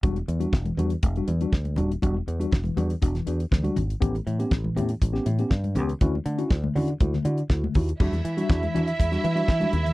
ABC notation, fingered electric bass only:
X:1
M:4/4
L:1/16
Q:1/4=121
K:Edor
V:1 name="Fingered electric bass" clef=bass
E,,,2 E,,2 E,,,2 E,,2 E,,,2 E,,2 D,,2 ^D,,,2 | E,,,2 E,,2 E,,,2 E,,2 E,,,2 E,,2 D,,2 ^G,,,2 | A,,,2 A,,2 A,,,2 A,,2 A,,,2 A,,2 G,,2 C,,2 | D,,2 D,2 D,,2 D,2 D,,2 D,2 D,,2 ^D,,2 |
E,, E,, E,2 E,,2 E,2 E,,2 E,2 E,2 ^D,,2 |]